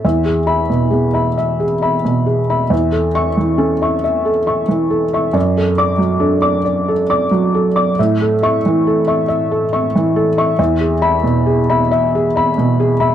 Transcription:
<<
  \new Staff \with { instrumentName = "Felt piano" } { \time 6/8 \key a \major \tempo 4. = 46 e''16 gis'16 <e'' b''>16 b,16 gis'16 <e'' b''>16 e''16 gis'16 <e'' b''>16 b,16 gis'16 <e'' b''>16 | e''16 a'16 <e'' cis'''>16 e16 a'16 <e'' cis'''>16 e''16 a'16 <e'' cis'''>16 e16 a'16 <e'' cis'''>16 | d''16 a'16 <d'' d'''>16 fis16 a'16 <d'' d'''>16 d''16 a'16 <d'' d'''>16 fis16 a'16 <d'' d'''>16 | e''16 a'16 <e'' cis'''>16 e16 a'16 <e'' cis'''>16 e''16 a'16 <e'' cis'''>16 e16 a'16 <e'' cis'''>16 |
e''16 gis'16 <e'' b''>16 b,16 gis'16 <e'' b''>16 e''16 gis'16 <e'' b''>16 b,16 gis'16 <e'' b''>16 | }
  \new Staff \with { instrumentName = "Felt piano" } { \clef bass \time 6/8 \key a \major e,4 b4 r4 | e,4 cis'4 r4 | fis,4 d'4 r4 | a,2. |
e,2. | }
>>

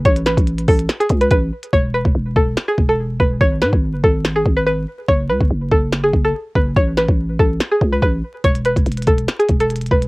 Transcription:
<<
  \new Staff \with { instrumentName = "Synth pluck" } { \time 4/4 \key e \major \tempo 4 = 143 cis''8 b'4 a'8. gis'8 b'16 b'8 r8 | cis''8 b'4 a'8. gis'8 a'8. b'8 | cis''8 b'4 a'8. gis'8 b'16 b'8 r8 | cis''8 b'4 a'8. gis'8 a'8. b'8 |
cis''8 b'4 a'8. gis'8 b'16 b'8 r8 | cis''8 b'4 a'8. gis'8 a'8. b'8 | }
  \new Staff \with { instrumentName = "808-style bass" } { \clef bass \time 4/4 \key e \major a,,8. a,,8. a,,8 r8 cis,8 a,,8 r8 | e,,8. e,,16 e,,8 e,,8 r8 e,,4 e,,8 | gis,,8 gis,16 gis,,8 fis,,16 gis,,4 gis,,4 r8 | fis,,8 cis,16 fis,,16 fis,,8 fis,,4 fis,,8 r8 fis,,8 |
a,,8. a,,8. a,,8 r8 cis,8 a,,8 r8 | e,,8. e,,16 e,,8 e,,8 r8 e,,4 e,,8 | }
  \new DrumStaff \with { instrumentName = "Drums" } \drummode { \time 4/4 <hh bd>16 hh16 <hh sn>16 <hh bd>16 hh16 hh16 <hho bd>16 hh16 <hh sn>16 hh16 <hh bd>16 hh16 <hh bd>8. hh16 | bd8. bd16 r8 bd8 sn8 bd8 r8 bd8 | bd8 sn16 bd16 r8 bd8 sn8 bd8 r4 | bd8. bd16 r8 bd8 sn8 bd8 r8 bd8 |
bd8 sn16 bd16 r8 bd8 sn8 bd8 bd4 | <hh bd>16 hh16 hh16 <hh bd>16 hh32 hh32 hh32 hh32 <hh bd>16 hh16 <hh sn>16 hh16 <hh bd>16 hh16 hh32 hh32 hh32 hh32 bd16 hh16 | }
>>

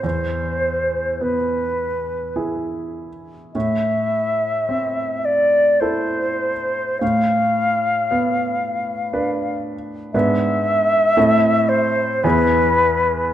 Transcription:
<<
  \new Staff \with { instrumentName = "Flute" } { \time 3/4 \key a \minor \tempo 4 = 53 c''4 b'4 r4 | e''4. d''8 c''4 | f''2~ f''8 r8 | e''4. c''8 b'4 | }
  \new Staff \with { instrumentName = "Grand piano" } { \time 3/4 \key a \minor e,4 b4 <e' gis'>4 | a,4 c'4 <e' a'>4 | a,4 b4 <d' b'>4 | <gis, b d' b'>4 <a, c' e' a'>4 <e, b e' gis'>4 | }
>>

